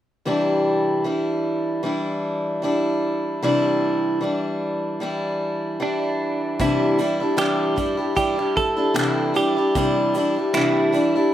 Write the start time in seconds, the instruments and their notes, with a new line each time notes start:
0.25 steel-string acoustic guitar C3 E3 G3 D4 E4
1.04 steel-string acoustic guitar E3 G3 D4 E4
1.83 steel-string acoustic guitar E3 G3 D4 E4
2.62 steel-string acoustic guitar E3 G3 D4 E4
3.42 steel-string acoustic guitar C3 E3 G3 D4 E4
4.21 steel-string acoustic guitar E3 G3 D4 E4
5.00 steel-string acoustic guitar E3 G3 D4 E4
5.80 steel-string acoustic guitar E3 G3 D4 E4, clean electric guitar D4
6.59 steel-string acoustic guitar C3 E3 G3 D4 E4, clean electric guitar E4, kick, shaker
6.99 steel-string acoustic guitar E3 G3 D4 E4, shaker
7.20 steel-string acoustic guitar G3 D4 E4
7.37 steel-string acoustic guitar C3 E3 G3 D4 E4, clean electric guitar G4, finger snap, shaker
7.76 steel-string acoustic guitar E3 G3 D4 E4, kick, shaker
7.97 steel-string acoustic guitar G3 D4 E4
8.15 steel-string acoustic guitar E3 G3 D4 E4, clean electric guitar G4, kick, shaker
8.37 steel-string acoustic guitar G3 D4 E4, finger snap
8.57 clean electric guitar A4, kick, shaker
8.77 steel-string acoustic guitar G3 D4 E4
8.94 steel-string acoustic guitar C3 E3 G3 D4 E4, finger snap, shaker
9.34 steel-string acoustic guitar E3 G3 D4 E4, clean electric guitar G4, shaker
9.57 steel-string acoustic guitar G3 D4 E4
9.75 steel-string acoustic guitar C3 E3 G3 D4 E4, kick, shaker
10.15 steel-string acoustic guitar E3 G3 D4 E4, shaker
10.36 steel-string acoustic guitar G3 D4 E4
10.54 steel-string acoustic guitar C3 E3 G3 D4 E4, clean electric guitar E4, finger snap, shaker
10.92 steel-string acoustic guitar E3 G3 D4 E4, shaker
11.15 steel-string acoustic guitar G3 D4 E4